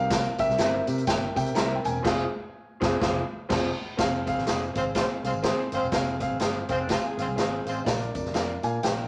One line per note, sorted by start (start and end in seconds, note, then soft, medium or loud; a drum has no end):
0.00 0.27 C2 loud
0.00 0.55 C3 medium
0.00 0.27 C4 medium
0.00 0.27 G4 medium
0.00 0.28 A#4 medium
0.00 0.36 F5 loud
0.00 0.28 G5 medium
0.10 kick loud
0.10 snare loud
0.10 closed hi-hat medium
0.10 tambourine loud
0.38 0.54 C4 medium
0.38 0.54 G4 medium
0.38 0.54 A#4 medium
0.38 1.10 E5 medium
0.38 0.54 G5 medium
0.38 kick medium
0.38 closed hi-hat medium
0.38 tambourine medium
0.49 0.57 C2 loud
0.49 snare soft
0.58 0.81 G1 medium
0.58 0.80 C4 loud
0.58 0.73 E4 medium
0.58 0.81 G4 loud
0.58 0.81 A#4 medium
0.58 0.74 A#4 medium
0.58 0.74 C5 loud
0.58 0.81 E5 loud
0.58 snare loud
0.58 closed hi-hat medium
0.58 tambourine loud
0.86 1.03 C3 loud
0.86 1.02 C4 medium
0.86 1.03 G4 medium
0.86 1.03 A#4 medium
0.86 1.03 E5 medium
0.86 closed hi-hat medium
0.86 tambourine medium
0.98 closed hi-hat medium
1.06 1.29 G1 loud
1.06 1.29 C4 medium
1.06 1.29 G4 medium
1.06 1.29 A#4 medium
1.06 1.30 E5 medium
1.06 1.35 G5 medium
1.06 kick loud
1.06 snare loud
1.06 closed hi-hat loud
1.06 tambourine loud
1.35 1.51 C3 loud
1.35 1.51 C4 medium
1.35 1.51 G4 medium
1.35 1.51 A#4 medium
1.35 1.51 E5 medium
1.35 1.57 G5 medium
1.35 kick medium
1.35 closed hi-hat medium
1.35 tambourine medium
1.46 closed hi-hat medium
1.55 1.78 C2 medium
1.55 1.77 C4 loud
1.55 1.70 E4 medium
1.55 1.77 G4 medium
1.55 1.78 A#4 medium
1.55 1.71 A#4 medium
1.55 1.71 C5 medium
1.55 1.78 E5 loud
1.55 1.77 A#5 medium
1.55 snare loud
1.55 closed hi-hat loud
1.55 tambourine loud
1.75 1.84 G5 medium
1.83 2.00 E1 loud
1.83 1.99 C4 medium
1.83 1.99 G4 medium
1.83 2.00 A#4 medium
1.83 2.00 G5 medium
1.83 2.78 G#5 medium
1.83 closed hi-hat medium
1.83 tambourine medium
2.03 2.24 F1 loud
2.03 2.23 C4 loud
2.03 2.23 F4 loud
2.03 2.24 F4 loud
2.03 2.24 G#4 loud
2.03 2.24 C5 loud
2.03 2.24 F5 loud
2.03 kick loud
2.03 snare loud
2.03 crash medium
2.81 2.95 F1 loud
2.81 2.95 C4 loud
2.81 2.94 F4 loud
2.81 2.95 F4 loud
2.81 2.95 G#4 loud
2.81 2.96 C5 loud
2.81 kick loud
2.81 snare loud
3.00 3.21 F1 loud
3.00 3.20 C4 loud
3.00 3.20 F4 medium
3.00 3.20 F4 loud
3.00 3.21 G#4 loud
3.00 3.21 C5 loud
3.00 3.21 F5 loud
3.00 kick loud
3.00 snare loud
3.49 3.70 F1 loud
3.49 3.69 C4 loud
3.49 3.69 F4 loud
3.49 3.69 G#4 loud
3.49 3.70 G#4 loud
3.49 3.70 C5 loud
3.49 kick loud
3.49 snare loud
3.49 crash medium
3.97 4.28 F1 loud
3.97 4.20 C4 loud
3.97 4.20 G#4 loud
3.97 4.20 F5 loud
3.97 kick loud
3.97 snare loud
3.97 closed hi-hat medium
3.97 tambourine medium
4.26 4.42 C4 loud
4.26 4.42 G#4 loud
4.26 4.43 F5 loud
4.26 kick medium
4.26 closed hi-hat medium
4.26 tambourine medium
4.37 4.45 G#1 medium
4.37 snare soft
4.46 4.69 F1 medium
4.46 4.68 C4 medium
4.46 4.61 F4 medium
4.46 4.69 G#4 medium
4.46 4.62 G#4 medium
4.46 4.62 C5 medium
4.46 4.69 F5 medium
4.46 snare loud
4.46 closed hi-hat medium
4.46 tambourine loud
4.74 5.01 G#1 medium
4.74 4.82 G#3 medium
4.74 4.90 C4 medium
4.74 4.82 C4 medium
4.74 4.82 F4 medium
4.74 4.90 G#4 medium
4.74 4.82 C5 loud
4.74 4.91 F5 medium
4.74 kick medium
4.74 closed hi-hat medium
4.74 tambourine medium
4.94 5.04 G#3 medium
4.94 5.17 C4 medium
4.94 5.04 C4 medium
4.94 5.04 F4 medium
4.94 5.17 G#4 medium
4.94 5.04 C5 loud
4.94 5.17 F5 medium
4.94 kick loud
4.94 snare loud
4.94 closed hi-hat loud
4.94 tambourine medium
5.23 5.31 C2 medium
5.23 5.31 G#3 medium
5.23 5.39 C4 medium
5.23 5.31 C4 medium
5.23 5.31 F4 medium
5.23 5.39 G#4 medium
5.23 5.31 C5 medium
5.23 5.39 F5 medium
5.23 closed hi-hat medium
5.23 tambourine medium
5.34 5.52 G#1 loud
5.42 5.65 C4 loud
5.42 5.58 F4 medium
5.42 5.65 G#4 loud
5.42 5.59 G#4 medium
5.42 5.66 C5 loud
5.42 5.59 C5 medium
5.42 snare loud
5.42 closed hi-hat medium
5.42 tambourine medium
5.72 5.80 G1 medium
5.72 5.86 G#3 medium
5.72 5.87 C4 medium
5.72 5.86 C4 loud
5.72 5.86 F4 medium
5.72 5.88 G#4 medium
5.72 5.86 C5 loud
5.72 5.88 F5 medium
5.72 closed hi-hat medium
5.72 tambourine soft
5.82 5.90 E1 medium
5.92 6.21 F1 loud
5.92 6.14 C4 loud
5.92 6.14 G#4 loud
5.92 6.15 F5 loud
5.92 kick loud
5.92 snare loud
5.92 closed hi-hat medium
5.92 tambourine medium
6.20 6.36 C4 loud
6.20 6.36 G#4 medium
6.20 6.36 F5 loud
6.20 kick medium
6.20 closed hi-hat medium
6.20 tambourine medium
6.31 6.38 G#1 medium
6.40 6.62 G1 medium
6.40 6.62 C4 medium
6.40 6.55 F4 medium
6.40 6.63 G#4 medium
6.40 6.56 G#4 medium
6.40 6.56 C5 medium
6.40 6.63 F5 medium
6.40 snare loud
6.40 closed hi-hat medium
6.40 tambourine loud
6.69 6.95 F1 loud
6.69 6.76 G#3 medium
6.69 6.84 C4 medium
6.69 6.80 C4 medium
6.69 6.76 C4 loud
6.69 6.76 F4 medium
6.69 6.84 G#4 medium
6.69 6.76 C5 loud
6.69 6.85 F5 medium
6.69 kick medium
6.69 closed hi-hat medium
6.69 tambourine soft
6.80 6.89 D4 medium
6.88 6.99 G#3 medium
6.88 7.10 C4 medium
6.88 6.99 C4 medium
6.88 7.03 F4 medium
6.88 6.99 F4 medium
6.88 7.11 G#4 medium
6.88 6.99 C5 loud
6.88 7.11 F5 medium
6.88 kick medium
6.88 snare loud
6.88 closed hi-hat medium
6.88 tambourine medium
7.04 7.73 G#4 medium
7.17 7.25 G#1 medium
7.17 7.25 G#3 medium
7.17 7.33 C4 medium
7.17 7.26 C4 medium
7.17 7.25 F4 medium
7.17 7.33 G#4 medium
7.17 7.26 C5 medium
7.17 7.33 F5 medium
7.17 closed hi-hat medium
7.17 tambourine medium
7.27 7.35 C2 medium
7.36 7.59 G#1 medium
7.36 7.59 C4 loud
7.36 7.52 F4 medium
7.36 7.59 G#4 medium
7.36 7.53 G#4 medium
7.36 7.53 C5 medium
7.36 7.59 F5 loud
7.36 snare loud
7.36 closed hi-hat medium
7.36 tambourine medium
7.65 7.81 A1 medium
7.65 7.80 G#3 medium
7.65 7.81 C4 medium
7.65 7.80 C4 medium
7.65 7.80 F4 medium
7.65 7.81 G#4 medium
7.65 7.80 C5 medium
7.65 7.82 F5 medium
7.65 closed hi-hat medium
7.65 tambourine soft
7.85 8.08 A#1 loud
7.85 8.59 A#2 medium
7.85 8.07 D4 medium
7.85 8.08 A#4 medium
7.85 8.32 D5 medium
7.85 8.08 F5 loud
7.85 kick loud
7.85 snare loud
7.85 closed hi-hat medium
7.85 tambourine medium
8.01 closed hi-hat soft
8.14 8.30 F2 medium
8.14 8.30 D4 medium
8.14 8.30 A#4 medium
8.14 8.31 D5 medium
8.14 kick medium
8.14 closed hi-hat medium
8.14 tambourine soft
8.25 snare soft
8.34 8.56 F2 medium
8.34 8.56 D4 medium
8.34 8.49 F4 medium
8.34 8.50 A#4 medium
8.34 8.57 A#4 medium
8.34 8.50 D5 medium
8.34 8.41 F5 medium
8.34 8.57 F5 medium
8.34 snare medium
8.34 closed hi-hat medium
8.34 tambourine loud
8.63 8.78 A#2 loud
8.63 8.78 D4 medium
8.63 8.79 A#4 medium
8.63 8.79 F5 medium
8.63 8.82 G#5 medium
8.63 closed hi-hat medium
8.63 tambourine soft
8.83 9.05 A#1 medium
8.83 9.05 D4 medium
8.83 9.05 A#4 medium
8.83 9.05 F5 medium
8.83 9.08 G5 medium
8.83 snare loud
8.83 closed hi-hat medium
8.83 tambourine medium